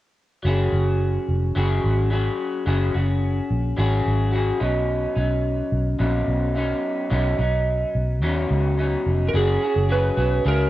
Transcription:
0.43 0.67 F#1 medium
0.43 1.55 F#3 medium
0.43 1.55 C#4 medium
0.43 1.56 F#4 medium
0.47 1.56 G#4 medium
0.72 1.17 F#1 medium
1.28 1.51 F1 medium
1.55 1.78 F#1 medium
1.55 2.10 F#3 medium
1.55 2.10 C#4 medium
1.55 2.11 F#4 medium
1.55 2.11 G#4 medium
1.84 2.28 G#1 medium
2.10 2.66 F#3 medium
2.10 2.67 C#4 soft
2.10 2.67 F#4 medium
2.10 2.67 G#4 medium
2.66 2.89 F#1 medium
2.66 2.94 F#3 medium
2.66 2.95 C#4 medium
2.66 2.94 F#4 medium
2.66 2.93 G#4 medium
2.94 3.39 F#1 medium
2.94 3.77 C#4 soft
2.94 3.78 F#4 soft
2.94 3.77 G#4 soft
3.50 3.73 A#1 medium
3.77 4.01 G#1 medium
3.77 4.31 F#3 medium
3.77 4.32 C#4 medium
3.77 4.33 F#4 medium
3.77 4.33 G#4 medium
4.06 4.51 G#1 medium
4.32 4.60 F#3 medium
4.32 4.59 C#4 medium
4.32 4.60 F#4 medium
4.32 4.62 G#4 medium
4.60 5.06 B1 medium
4.60 5.17 B2 medium
4.60 5.18 F#3 medium
4.60 5.16 C#4 medium
4.60 5.14 D#4 medium
5.15 5.61 B1 medium
5.15 5.99 F#3 soft
5.15 6.00 C#4 soft
5.15 6.00 D#4 soft
5.72 5.95 B1 medium
5.99 6.22 A#1 medium
5.99 6.53 B2 medium
5.99 6.55 F#3 medium
5.99 6.56 C#4 medium
5.99 6.56 D#4 medium
6.28 6.73 B1 medium
6.55 7.09 B2 medium
6.55 7.10 F#3 medium
6.55 7.11 C#4 medium
6.55 7.10 D#4 medium
7.10 7.34 B1 medium
7.10 7.38 B2 medium
7.10 7.39 F#3 medium
7.10 7.38 C#4 medium
7.10 7.37 D#4 medium
7.39 7.83 B1 medium
7.39 8.22 F#3 soft
7.39 8.22 C#4 soft
7.39 8.22 D#4 soft
7.95 8.23 B1 medium
8.22 8.45 D#2 medium
8.22 8.76 B2 medium
8.22 8.78 F#3 medium
8.22 8.79 C#4 medium
8.22 8.79 D#4 medium
8.51 8.95 C#2 medium
8.77 9.33 B2 medium
8.77 9.33 F#3 medium
8.77 9.33 C#4 medium
8.77 9.34 D#4 medium
9.06 9.28 F1 medium
9.29 9.35 A#4 medium
9.33 9.56 F#1 medium
9.33 9.61 F#3 medium
9.33 9.62 C#4 medium
9.33 9.62 F#4 medium
9.33 9.60 G#4 medium
9.33 9.92 G#4 medium
9.62 9.89 C#4 soft
9.62 9.89 F#4 soft
9.62 9.89 G#4 soft
9.76 10.09 F#1 medium
9.89 10.17 F#3 medium
9.89 10.17 C#4 soft
9.89 10.17 F#4 medium
9.89 10.16 G#4 medium
9.89 10.42 B4 medium
10.17 10.39 B1 medium
10.17 10.44 C#4 soft
10.17 10.45 F#4 soft
10.17 10.45 G#4 medium
10.45 10.67 C#2 medium
10.45 10.70 F#3 medium
10.45 10.70 C#4 medium
10.45 10.70 F#4 medium
10.45 10.70 G#4 medium
10.45 10.70 A#4 medium

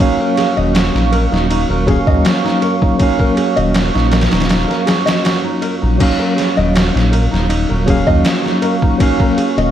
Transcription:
0.00 1.86 F#3 medium
0.00 5.95 F#3 medium
0.00 1.87 A#3 medium
0.00 1.89 C#4 medium
0.00 0.19 D#4 medium
0.00 0.02 F5 loud
0.00 5.95 F5 medium
0.00 1.84 F5 medium
0.00 5.96 C#6 medium
0.00 kick loud
0.00 ride medium
0.20 0.36 A#4 medium
0.37 0.49 G#4 medium
0.37 snare soft
0.37 ride medium
0.57 0.90 D#1 medium
0.57 0.74 D#5 loud
0.75 0.93 F#4 medium
0.75 snare loud
0.75 ride medium
0.95 1.27 A#1 medium
0.95 1.11 D#4 medium
0.95 snare soft
1.12 1.23 A#4 medium
1.12 ride medium
1.32 1.65 D#1 medium
1.32 1.48 D#4 medium
1.32 snare soft
1.50 1.69 D#4 medium
1.50 ride medium
1.69 2.02 D#1 loud
1.69 1.86 A#4 medium
1.86 2.95 F#3 medium
1.86 2.96 A#3 medium
1.86 2.96 C#4 medium
1.86 1.99 G#4 medium
1.86 kick medium
1.86 ride medium
1.91 2.97 F5 medium
2.07 2.23 D#2 medium
2.07 2.24 D#5 loud
2.07 kick medium
2.24 2.42 F#4 medium
2.24 snare loud
2.24 ride medium
2.44 2.61 D#4 medium
2.44 snare soft
2.62 2.73 A#4 medium
2.62 ride medium
2.81 2.98 D#4 medium
2.81 kick loud
2.98 4.82 F#3 medium
2.98 4.83 A#3 medium
2.98 4.84 C#4 medium
2.98 3.18 D#4 medium
2.98 kick loud
2.98 ride medium
3.03 4.85 F5 medium
3.19 3.35 A#4 medium
3.19 kick medium
3.37 3.48 G#4 medium
3.37 ride medium
3.56 3.90 D#1 loud
3.56 3.73 D#5 loud
3.56 ride soft
3.74 3.92 F#4 medium
3.74 snare loud
3.74 ride medium
3.94 4.28 A#1 medium
3.94 4.11 D#4 medium
3.94 snare soft
4.11 4.23 A#4 medium
4.11 snare medium
4.11 ride medium
4.21 snare medium
4.21 ride medium
4.31 4.65 D#1 medium
4.31 4.47 D#4 medium
4.31 snare medium
4.31 ride medium
4.40 snare medium
4.40 ride medium
4.49 4.68 D#4 medium
4.49 snare loud
4.49 ride medium
4.68 4.85 A#4 medium
4.68 snare soft
4.86 4.98 G#4 medium
4.86 snare loud
4.86 ride medium
5.06 5.23 D#5 loud
5.06 snare loud
5.06 ride medium
5.24 5.42 F#4 medium
5.24 snare loud
5.24 ride medium
5.44 5.61 D#4 medium
5.62 5.73 A#4 medium
5.62 ride medium
5.82 5.98 A#1 loud
5.82 5.98 D#4 medium
5.98 7.82 F#3 medium
5.98 9.71 F#3 medium
5.98 7.83 A#3 medium
5.98 7.83 C#4 medium
5.98 6.18 D#4 medium
5.98 9.71 F5 medium
5.98 9.71 C#6 medium
5.98 kick loud
5.98 crash medium
5.98 ride medium
6.02 7.84 F5 medium
6.19 6.35 A#4 medium
6.36 6.48 G#4 medium
6.36 snare soft
6.36 ride medium
6.57 6.90 D#1 loud
6.57 6.74 D#5 loud
6.74 6.92 F#4 medium
6.74 snare loud
6.74 ride medium
6.94 7.28 A#1 medium
6.94 7.11 D#4 medium
6.94 snare medium
7.12 7.23 A#4 medium
7.12 ride medium
7.31 7.65 D#1 medium
7.31 7.48 D#4 medium
7.31 snare soft
7.49 7.68 D#4 medium
7.49 ride medium
7.69 8.03 D#1 loud
7.69 7.85 A#4 medium
7.86 8.95 F#3 medium
7.86 8.95 A#3 medium
7.86 8.96 C#4 medium
7.86 7.98 G#4 medium
7.86 kick medium
7.86 ride medium
7.90 8.97 F5 loud
8.07 8.23 D#2 medium
8.07 8.24 D#5 loud
8.07 kick medium
8.24 8.42 F#4 medium
8.24 snare loud
8.24 ride medium
8.44 8.61 D#4 medium
8.44 snare soft
8.62 8.73 A#4 medium
8.62 ride medium
8.82 8.98 D#4 medium
8.82 kick loud
8.98 9.71 F#3 medium
8.98 9.71 A#3 medium
8.98 9.71 C#4 medium
8.98 9.19 D#4 medium
8.98 kick loud
8.98 ride medium
9.02 9.71 F5 medium
9.20 9.36 A#4 medium
9.20 kick medium
9.38 9.49 G#4 medium
9.38 ride medium
9.57 9.71 D#1 loud
9.57 9.71 D#5 loud
9.57 ride soft

